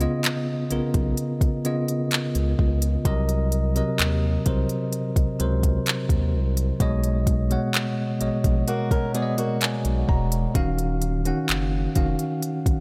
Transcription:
Already playing: tine electric piano D#5
0.00 tine electric piano C#3 B3 F4 D#5, closed hi-hat
0.24 clap, closed hi-hat
0.70 sub bass B1, tine electric piano C#3 B3 F4 A#4, closed hi-hat
0.94 sub bass B1, kick, closed hi-hat
1.17 closed hi-hat
1.41 kick, closed hi-hat
1.65 tine electric piano C#3 B3 F4 D#5, closed hi-hat
1.88 closed hi-hat
2.11 clap, closed hi-hat
2.35 sub bass C#2, closed hi-hat
2.59 sub bass C#2, kick
2.82 closed hi-hat
3.05 sub bass C2, tine electric piano C3 F#3 A#4 D#5, kick, closed hi-hat
3.29 closed hi-hat
3.52 closed hi-hat
3.75 tine electric piano C3 F#3 A#4 D#5, closed hi-hat
3.99 sub bass D#2, clap, closed hi-hat
4.45 sub bass C2, tine electric piano C3 F#3 A#4 C5, kick, closed hi-hat
4.69 closed hi-hat
4.93 closed hi-hat
5.16 sub bass C#2, kick, closed hi-hat
5.39 sub bass C#2, tine electric piano C3 F#3 A#4 C5, closed hi-hat
5.63 kick, closed hi-hat
5.86 clap, closed hi-hat
6.09 sub bass D#2, kick, closed hi-hat
6.34 sub bass C2
6.57 closed hi-hat
6.80 sub bass B1, tine electric piano B2 G#3 C#5 D#5, kick, closed hi-hat
7.04 closed hi-hat
7.27 kick, closed hi-hat
7.50 tine electric piano B2 G#3 C#5 F#5, closed hi-hat
7.74 clap, closed hi-hat
8.21 sub bass A#1, tine electric piano B2 G#3 C#5 D#5, closed hi-hat
8.44 sub bass A#1, kick, closed hi-hat
8.67 steel-string acoustic guitar A#3 F#4, tine electric piano F#5, closed hi-hat
8.91 steel-string acoustic guitar C#4 A#4, kick, closed hi-hat
9.14 tine electric piano B2 G#3 C#5 D5, steel-string acoustic guitar B3 G#4, closed hi-hat
9.22 tine electric piano D#5
9.38 steel-string acoustic guitar A#3 F#4, closed hi-hat
9.61 tine electric piano G#5, clap, closed hi-hat
9.85 sub bass B1, closed hi-hat
10.09 sub bass E1, tine electric piano A#5, kick
10.32 closed hi-hat
10.55 sub bass D#1, tine electric piano D#3 C#4 F#4 F5, kick, closed hi-hat
10.78 closed hi-hat
11.02 closed hi-hat
11.25 tine electric piano D#3 C#4 F#4 F#5, closed hi-hat
11.49 sub bass F#1, clap, closed hi-hat
11.95 sub bass F1, tine electric piano D#3 C#4 F#4 F5, kick, closed hi-hat
12.19 closed hi-hat
12.42 closed hi-hat
12.66 sub bass G#1, kick, closed hi-hat

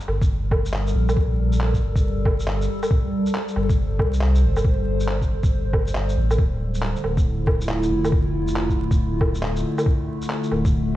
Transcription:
Already playing: ambient pad G3 A4 A#4
0.08 sub bass G1, low woodblock
0.22 kick, shaker
0.51 kick, low woodblock
0.65 shaker
0.73 clap
0.87 shaker
0.95 sub bass A#1
1.09 low woodblock, shaker
1.17 kick
1.52 shaker
1.60 clap
1.74 kick, shaker
1.83 sub bass G1
1.96 kick, shaker
2.25 kick, low woodblock
2.40 shaker
2.48 clap
2.61 shaker
2.83 low woodblock, shaker
2.91 kick
3.18 ambient pad C5
3.26 shaker
3.35 clap
3.48 shaker
3.56 sub bass G1, low woodblock
3.69 kick, shaker
3.99 sub bass C2, kick, low woodblock
4.13 shaker
4.21 clap
4.35 shaker
4.43 sub bass G1
4.57 low woodblock, shaker
4.65 kick
5.00 shaker
5.08 clap
5.22 kick, shaker
5.30 sub bass G1
5.43 kick, shaker
5.73 kick, low woodblock
5.87 shaker
5.95 clap
6.09 shaker
6.17 sub bass A1
6.31 low woodblock, shaker
6.38 sub bass D1, ambient pad D3, kick
6.59 ambient pad A3
6.71 ambient pad E4, shaker
6.82 clap
6.96 shaker
7.04 sub bass D1, ambient pad F4, low woodblock
7.17 kick, shaker
7.47 kick, low woodblock
7.61 shaker
7.69 clap
7.83 shaker
7.91 sub bass F1
8.05 low woodblock, shaker
8.12 kick
8.48 shaker
8.56 clap
8.69 kick, shaker
8.78 sub bass D1
8.91 kick, shaker
9.21 kick, low woodblock
9.35 shaker
9.43 clap
9.56 shaker
9.78 low woodblock, shaker
9.86 kick
10.22 shaker
10.30 clap
10.43 shaker
10.49 sub bass D1, ambient pad D4, low woodblock
10.65 kick, shaker
10.91 ambient pad G4

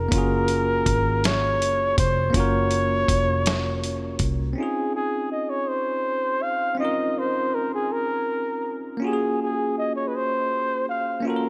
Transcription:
Already playing: tine electric piano G#4, flugelhorn A#4
0.09 fingered electric bass F#1, tine electric piano A#3 C#4, kick, closed hi-hat
0.14 tine electric piano F4 F#4
0.18 tine electric piano G#4
0.48 closed hi-hat
0.86 fingered electric bass G#1, kick, closed hi-hat
1.24 flugelhorn C#5, snare, closed hi-hat
1.60 fingered electric bass F#1, closed hi-hat
1.98 fingered electric bass F1, flugelhorn C5, kick, closed hi-hat
2.30 tine electric piano A#3 C#4, kick
2.34 fingered electric bass F#1, tine electric piano F4 F#4, flugelhorn C#5, closed hi-hat
2.40 tine electric piano A#4
2.71 closed hi-hat
3.08 fingered electric bass F1, kick, closed hi-hat
3.46 snare, closed hi-hat
3.84 closed hi-hat
4.19 fingered electric bass C2, kick, closed hi-hat
4.53 tine electric piano C4 C#4
4.58 tine electric piano D#4 F4, flugelhorn G#4
4.63 tine electric piano G#4
4.95 flugelhorn G#4
5.32 flugelhorn D#5
5.50 flugelhorn C#5
5.68 flugelhorn C5
6.43 flugelhorn F5
6.75 tine electric piano C4 C#4
6.79 tine electric piano D#4 F4, flugelhorn D#5
6.85 tine electric piano A#4
7.18 flugelhorn C5
7.55 flugelhorn A#4
7.74 flugelhorn G#4
7.92 flugelhorn A#4
8.97 tine electric piano A#3 C#4
9.02 tine electric piano F4 F#4, flugelhorn G#4
9.07 tine electric piano G4
9.13 tine electric piano G#4
9.41 flugelhorn G#4
9.78 flugelhorn D#5
9.96 flugelhorn C#5
10.08 flugelhorn B4
10.16 flugelhorn C5
10.89 flugelhorn F5
11.20 tine electric piano A#3 C#4
11.25 tine electric piano F4 F#4, flugelhorn A#4
11.30 tine electric piano A4
11.36 tine electric piano A#4

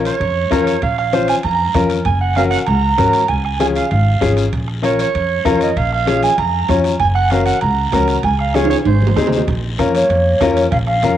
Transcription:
Already playing: upright piano C#4 F4 A#4
0.05 clarinet C#5, high timbale, short guiro
0.20 upright bass F2, high conga, high timbale, long guiro
0.51 upright bass F2, upright piano C#4 F4 A#4, bombo low, bombo rim, high conga, high timbale, short guiro
0.67 high timbale, short guiro
0.82 upright bass A#1, clarinet F5, bombo low, high conga, high timbale, long guiro
0.98 clarinet F5, bombo rim
1.13 upright piano C#4 F4 C5, bombo rim, high conga, high timbale, short guiro
1.28 clarinet G#5, high timbale, short guiro
1.43 upright bass F2, clarinet A#5, high conga, high timbale, long guiro
1.74 upright bass F2, upright piano C#4 F4 A#4, bombo low, bombo rim, high conga, high timbale, short guiro
1.90 high timbale, short guiro
2.05 upright bass F#1, clarinet G#5, bombo low, high conga, high timbale, long guiro
2.21 clarinet F#5
2.35 upright piano C#4 F#4 A#4, clarinet F5, bombo rim, high conga, high timbale, short guiro
2.51 clarinet F#5, high timbale, short guiro
2.67 upright bass C#2, clarinet A#5, high conga, high timbale, long guiro
2.98 upright bass G#2, upright piano C#4 F#4 A#4, bombo low, bombo rim, high conga, high timbale, short guiro
3.13 high timbale, short guiro
3.28 upright bass C#2, clarinet G#5, bombo low, high conga, high timbale, long guiro
3.45 clarinet G#5, bombo rim
3.60 upright piano C#4 F4 G#4, clarinet G#5, bombo rim, high conga, high timbale, short guiro
3.75 clarinet F5, high timbale, short guiro
3.91 upright bass G#1, clarinet F5, high conga, high timbale, long guiro
4.21 upright bass G#1, upright piano C#4 F4 G#4, bombo low, bombo rim, high conga, high timbale, short guiro
4.37 high timbale, short guiro
4.53 upright bass A#1, bombo low, high conga, high timbale, long guiro
4.68 bombo rim
4.82 upright piano C#4 F4 A#4, clarinet C#5, bombo rim, high conga, high timbale, short guiro
4.99 clarinet C#5, high timbale, short guiro
5.15 upright bass F2, high conga, high timbale, long guiro
5.45 upright bass F2, upright piano C#4 F4 A#4, bombo low, bombo rim, high conga, high timbale, short guiro
5.61 clarinet D#5, high timbale, short guiro
5.76 upright bass A#1, clarinet F5, bombo low, high conga, high timbale, long guiro
5.92 clarinet F5, bombo rim
6.06 upright piano C#4 F4 G#4, bombo rim, high conga, high timbale, short guiro
6.23 clarinet G#5, high timbale, short guiro
6.38 upright bass F2, clarinet A#5, high conga, high timbale, long guiro
6.69 upright bass F2, upright piano C#4 F4 C#5, bombo low, bombo rim, high conga, high timbale, low timbale, short guiro
6.84 high timbale, short guiro
7.00 upright bass F#1, clarinet G#5, bombo low, high conga, high timbale, long guiro
7.15 clarinet F#5, bombo rim
7.30 upright piano C#4 F#4 A#4, clarinet F5, bombo rim, high conga, high timbale, short guiro
7.46 clarinet F#5, high timbale, short guiro
7.61 upright bass C#2, clarinet A#5, high conga, high timbale, long guiro
7.92 upright bass C#2, upright piano C#4 F#4 A#4, bombo low, bombo rim, high conga, high timbale, low timbale, short guiro
8.08 high timbale, short guiro
8.23 upright bass C#2, clarinet G#5, bombo low, high conga, high timbale, long guiro
8.39 clarinet F5, bombo rim
8.54 upright piano C#4 F4 G#4, clarinet C#5, bombo rim, high conga, high timbale, short guiro
8.65 high timbale
8.70 clarinet C#5, short guiro
8.75 high timbale
8.85 upright bass G#1, clarinet C5, high conga, high timbale, long guiro
9.02 high conga
9.07 low timbale
9.16 upright bass D#2, upright piano C4 D#4 G#4, bombo low, bombo rim, low timbale, short guiro
9.22 low conga
9.27 low timbale
9.32 low conga, short guiro
9.37 low timbale
9.47 upright bass A#1, bombo low, high conga, high timbale, long guiro
9.78 upright bass F2, clarinet A#3, upright piano C#4 F4 A#4, flute C#5, bombo rim, high conga, high timbale, short guiro
9.93 clarinet A#3, flute C#5, high timbale, short guiro
10.10 upright bass F2, high conga, high timbale, long guiro
10.41 upright bass F2, upright piano C#4 F4 A#4, bombo low, bombo rim, high conga, high timbale, low timbale, short guiro
10.57 high timbale, short guiro
10.71 upright bass A#1, clarinet C#4, flute F5, bombo low, high conga, high timbale, long guiro
10.87 clarinet C#4, flute F5, bombo rim
11.03 upright bass F2, upright piano C#4 F4 A#4, bombo rim, high conga, high timbale, short guiro

